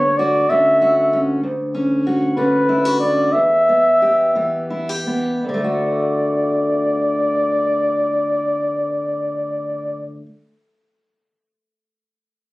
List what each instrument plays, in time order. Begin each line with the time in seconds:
Already playing: steel-string acoustic guitar D2 D3, flugelhorn C#5
0.17 steel-string acoustic guitar F#4, flugelhorn D5
0.49 steel-string acoustic guitar D3 C#4, flugelhorn E5
0.82 steel-string acoustic guitar F#4
1.13 steel-string acoustic guitar C#4
1.43 steel-string acoustic guitar D2
1.75 steel-string acoustic guitar C#4
2.07 steel-string acoustic guitar F#4
2.36 steel-string acoustic guitar D3 C#4, flugelhorn B4
2.69 steel-string acoustic guitar E4
2.85 steel-string acoustic guitar F#4
3.00 steel-string acoustic guitar C#4, flugelhorn D5
3.32 steel-string acoustic guitar E2, flugelhorn E5
3.69 steel-string acoustic guitar B3
4.02 steel-string acoustic guitar G4
4.35 steel-string acoustic guitar E3 B3
4.70 steel-string acoustic guitar E4
4.89 steel-string acoustic guitar G4
5.07 steel-string acoustic guitar B3
5.43 steel-string acoustic guitar D2, flugelhorn D5
5.49 steel-string acoustic guitar D3
5.54 steel-string acoustic guitar A3
5.64 steel-string acoustic guitar F#4